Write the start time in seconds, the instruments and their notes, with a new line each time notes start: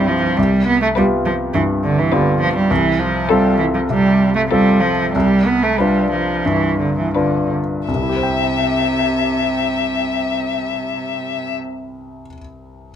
Already playing: grand piano C2 G2 C4 E4 G4, violin G4
0.08 cello F3
0.37 grand piano C2, cello G3
0.67 cello B3
0.82 cello A3
0.96 cello G3, grand piano B3 F4 G4, violin B4
1.26 cello F3
1.54 grand piano G2, cello E3
1.84 cello D3
1.99 cello E3
2.11 cello D3, grand piano B3 F4 G4, violin B4
2.41 cello F3
2.56 cello G3
2.71 grand piano C2, cello E3
3.00 cello F3
3.29 cello G3, grand piano C4 F4 A4, violin A4
3.59 cello E3
3.75 cello F3
3.90 grand piano C3, cello G3
4.35 cello A3
4.50 cello G3, grand piano C4 F4 A4, violin A4
4.81 cello F3
5.13 grand piano C2, cello G3
5.46 cello B3
5.63 cello A3
5.78 cello G3, grand piano D4 F4 B4, violin B4
6.12 cello F3
6.46 grand piano G2, cello E3
6.80 cello D3
6.99 cello E3
7.15 cello D3, grand piano D4 F4 B4, violin B4
7.88 grand piano C2, cello C3, violin E5
7.95 grand piano C3
8.02 grand piano E4
8.09 grand piano G4
8.16 grand piano C5
8.23 grand piano G5